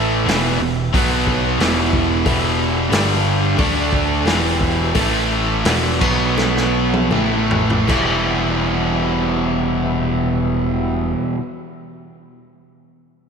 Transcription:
Already playing: picked electric bass A1, overdriven electric guitar A2 E3 A3, tonewheel organ A3 E4 A4 E5
0.26 picked electric bass E1, overdriven electric guitar E2 B2 E3, tonewheel organ E4 G4 B4 E5, snare, open hi-hat
0.60 picked electric bass E1, overdriven electric guitar E2 B2
0.94 picked electric bass B1, overdriven electric guitar B2 F#3 B3, tonewheel organ B3 F#4 B4 F#5, kick, open hi-hat
1.27 kick
1.59 picked electric bass E1, overdriven electric guitar E2 B2 E3, tonewheel organ E4 G4 B4 E5, snare, open hi-hat
1.93 kick
2.26 picked electric bass E1, overdriven electric guitar E2 B2 E3, kick, open hi-hat, cowbell
2.92 picked electric bass G1, overdriven electric guitar G2 D3 G3, tonewheel organ D4 G4 D5 G5, snare, open hi-hat, cowbell
3.58 picked electric bass D2, overdriven electric guitar D3 A3 D4, tonewheel organ D4 A4 D5 A5, kick, open hi-hat, cowbell
3.93 kick
4.25 picked electric bass E1, overdriven electric guitar E2 B2 E3, tonewheel organ G4 B4 E5 G5, snare, open hi-hat, cowbell
4.61 kick
4.95 picked electric bass A1, overdriven electric guitar A2 E3 A3, tonewheel organ E4 A4 E5 A5, kick, open hi-hat, cowbell
5.65 picked electric bass E1, overdriven electric guitar E2 B2 E3, snare, open hi-hat, cowbell
6.00 picked electric bass B1, overdriven electric guitar B2 F#3 B3, tonewheel organ B3 F#4 B4 F#5, kick, crash
6.38 snare, cowbell
6.57 snare
6.94 high tom
7.11 picked electric bass A1, overdriven electric guitar A2 E3 A3, tonewheel organ A3 E4 A4 E5, mid tom, cowbell
7.51 floor tom
7.70 floor tom
7.87 picked electric bass E1, overdriven electric guitar E2 B2 E3 G3 B3, tonewheel organ E4 G4 B4 E5, kick, crash, cowbell
7.92 overdriven electric guitar E4

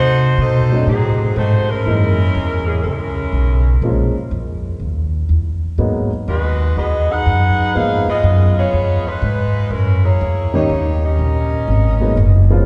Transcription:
Already playing: upright bass C3, saxophone section A3 D#4 F#4 C5
0.38 upright bass B2, saxophone section F#3 D#4 A4 C5
0.72 upright piano F#3 A3 C4 D4 D#4
0.87 upright bass A2, saxophone section F#3 C4 D#4 G#4
1.36 upright bass G#2, saxophone section A3 D#4 F#4 C5
1.70 saxophone section G#3 C#4 E4 A#4
1.86 upright bass F#2, upright piano E3 G#3 A#3 C#4 D#4
2.35 upright bass E2
2.67 saxophone section E3 A#3 C#4 G#4
2.82 upright bass C#2, saxophone section G#3 C#4 E4 A#4
3.32 upright bass B1
3.82 upright bass A#1, upright piano F3 G#3 A#3 C#4 F4
4.16 muted upright bass stroke
4.31 upright bass F2
4.80 upright bass D#2
5.29 upright bass E2
5.78 upright bass G#2, upright piano F#3 G#3 A#3 B3 D#4
6.12 muted upright bass stroke
6.27 upright bass D#2, saxophone section G#3 D#4 F#4 B4
6.77 upright bass E2, saxophone section B3 F#4 G#4 D#5
7.11 saxophone section D#4 G#4 B4 F#5
7.26 upright bass F#2
7.74 upright bass G#2, upright piano F3 G#3 A#3 B3 D#4, saxophone section D#4 G#4 B4 F5
8.08 saxophone section B3 F4 G#4 D#5, muted upright bass stroke
8.23 upright bass F#2
8.58 saxophone section B3 F4 G#4 C#5
8.73 upright bass F2
9.07 saxophone section G#3 D#4 F4 B4
9.22 upright bass G#2
9.70 upright bass F#2, saxophone section G#3 C#4 E4 A#4
10.05 saxophone section A#3 E4 G#4 C#5
10.21 upright bass E2
10.53 upright piano D#3 G3 A#3 C#4 D#4, saxophone section A#3 D#4 G4 C#5
10.70 upright bass D#2
11.04 saxophone section C#4 G4 A#4 D#5
11.19 upright bass A#1
11.68 upright bass G#1
12.01 upright piano F#3 G#3 A#3 B3 D#4
12.17 upright bass F#1
12.50 upright piano F3 G#3 B3 C#4 F4

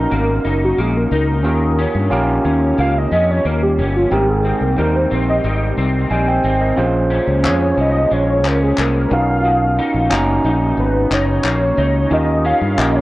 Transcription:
Already playing: clean electric guitar B2 D#4, tine electric piano C#4 D#4 F#4 A#5, soft synth lead A#4
0.11 fretless electric bass G#1, clean electric guitar A#3
0.44 fretless electric bass F#1, clean electric guitar D#4
0.64 soft synth lead F#4
0.78 fretless electric bass A#1, clean electric guitar A#3, soft synth lead G#4
0.97 soft synth lead A#4
1.11 fretless electric bass C#2, clean electric guitar D#4
1.43 fretless electric bass D#2, clean electric guitar D#3, tine electric piano C#4 F4 G4 A#4
1.79 clean electric guitar C#4
1.94 fretless electric bass G2
2.10 fretless electric bass A#1, clean electric guitar A#3, tine electric piano C#4 F4 G4 A#4
2.45 fretless electric bass D#2, clean electric guitar C#4
2.78 fretless electric bass C#2, clean electric guitar A#3, soft synth lead F5
2.98 soft synth lead D#5
3.11 fretless electric bass F2, clean electric guitar C#4
3.31 soft synth lead C#5
3.45 fretless electric bass D#2, clean electric guitar A#3, soft synth lead A#4
3.62 soft synth lead G4
3.78 fretless electric bass G1, clean electric guitar C#4
3.92 soft synth lead G4
3.96 soft synth lead F4
4.10 fretless electric bass G#1, clean electric guitar G#2, tine electric piano C4 D#4 A#4 G5, soft synth lead G4
4.29 soft synth lead G#4
4.45 clean electric guitar C4
4.61 fretless electric bass C2, soft synth lead A#4
4.77 fretless electric bass D#2, clean electric guitar G3, tine electric piano C4 D#4 G4 A#4
4.96 soft synth lead C5
5.11 fretless electric bass A#1, clean electric guitar C4
5.29 soft synth lead D#5
5.44 fretless electric bass G#1, clean electric guitar G3
5.77 fretless electric bass C2, clean electric guitar C4
6.10 fretless electric bass A#1, clean electric guitar G3, tine electric piano D#5 G#5
6.28 tine electric piano C5 G5
6.44 fretless electric bass G#1, clean electric guitar C4
6.61 tine electric piano A#4 D#5
6.76 fretless electric bass A#1, clean electric guitar A#2, tine electric piano C#4 F4 G#4 C5
7.11 clean electric guitar C#4
7.27 fretless electric bass C#2
7.43 fretless electric bass F2, clean electric guitar G#3, tine electric piano C#4 F4 G#4 C#5, soft synth lead C#5, clap
7.77 fretless electric bass C2, clean electric guitar C#4, soft synth lead D#5
8.11 fretless electric bass A#1, clean electric guitar G#3, soft synth lead C#5
8.44 fretless electric bass C#2, clean electric guitar C#4, soft synth lead A#4, clap
8.63 soft synth lead G#4
8.78 fretless electric bass C2, clean electric guitar G#3, soft synth lead A#4, clap
9.11 fretless electric bass B1, clean electric guitar B2, tine electric piano C#4 D#4 F#4 A#4, soft synth lead F5
9.45 clean electric guitar B2
9.79 clean electric guitar D#4
9.94 fretless electric bass A#1
10.10 fretless electric bass F#1, clean electric guitar A#3, tine electric piano C#4 D#4 F#4 A#5, clap
10.44 fretless electric bass A#1, clean electric guitar D#4
10.77 fretless electric bass G#1, soft synth lead B4
11.10 fretless electric bass F#1, clean electric guitar D#4, soft synth lead C#5, clap
11.44 fretless electric bass A#1, clean electric guitar A#3, clap
11.77 fretless electric bass C#2, clean electric guitar D#4
12.10 fretless electric bass D#2, clean electric guitar D#3, tine electric piano C#4 F4 G4 A#4, soft synth lead D#5
12.44 clean electric guitar C#4, soft synth lead F5
12.61 fretless electric bass G2, soft synth lead F5
12.77 fretless electric bass A#1, clean electric guitar A#3, tine electric piano C#4 F4 G4 A#4, soft synth lead D#5, clap
12.95 soft synth lead C#5

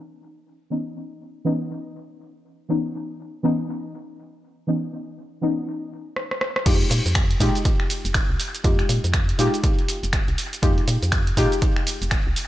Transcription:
Already playing: synth stab E3 B3 C#4 D#4
0.70 synth stab E3 B3 C#4 D#4
1.45 synth stab E3 B3 C#4 D#4
2.69 synth stab E3 B3 C#4 D#4
3.43 synth stab E3 B3 C#4 D#4
4.67 synth stab E3 B3 C#4 D#4
5.41 synth stab E3 B3 C#4 D#4
6.16 cross-stick
6.31 cross-stick
6.41 cross-stick
6.56 cross-stick
6.65 fm bass F2, synth stab G#3 D#4 F4 G4, kick, closed hi-hat, crash, ride, shaker
6.81 closed hi-hat
6.91 fm bass A#2, open hi-hat, shaker
7.06 fm bass F2, closed hi-hat, shaker
7.15 finger snap, kick, closed hi-hat, ride, shaker
7.31 closed hi-hat
7.40 fm bass A#2, synth stab G#3 D#4 F4 G4, kick, open hi-hat, shaker
7.55 closed hi-hat, shaker
7.65 kick, closed hi-hat, ride, shaker
7.80 finger snap
7.90 open hi-hat, shaker
8.05 fm bass F1, closed hi-hat, shaker
8.14 finger snap, kick, closed hi-hat, ride, shaker
8.30 fm bass C2
8.40 open hi-hat, shaker
8.55 closed hi-hat, shaker
8.64 fm bass F2, synth stab G#3 D#4 F4 G4, kick, closed hi-hat, ride, shaker
8.79 finger snap, closed hi-hat
8.89 fm bass A#2, open hi-hat, shaker
9.04 fm bass F2, closed hi-hat, shaker
9.14 finger snap, kick, closed hi-hat, ride, shaker
9.29 closed hi-hat
9.38 fm bass A#2, synth stab G#3 D#4 F4 G4, open hi-hat, shaker
9.54 closed hi-hat, shaker
9.64 kick, closed hi-hat, ride, shaker
9.79 closed hi-hat
9.88 open hi-hat, shaker
10.03 fm bass F1, closed hi-hat, shaker
10.13 finger snap, kick, closed hi-hat, ride, shaker
10.28 fm bass C2, closed hi-hat
10.38 open hi-hat, shaker
10.53 closed hi-hat, shaker
10.62 fm bass F2, synth stab G#3 D#4 F4 G4, kick, closed hi-hat, ride, shaker
10.78 closed hi-hat
10.88 fm bass A#2, open hi-hat, shaker
11.03 fm bass F2, closed hi-hat, shaker
11.12 finger snap, kick, closed hi-hat, ride, shaker
11.27 closed hi-hat
11.36 fm bass A#2, synth stab G#3 D#4 F4 G4, kick, open hi-hat, shaker
11.52 closed hi-hat, shaker
11.62 kick, closed hi-hat, ride, shaker
11.76 finger snap
11.87 open hi-hat, shaker
12.02 fm bass F1, closed hi-hat, shaker
12.11 finger snap, kick, closed hi-hat, ride, shaker
12.27 fm bass C2
12.36 open hi-hat, shaker

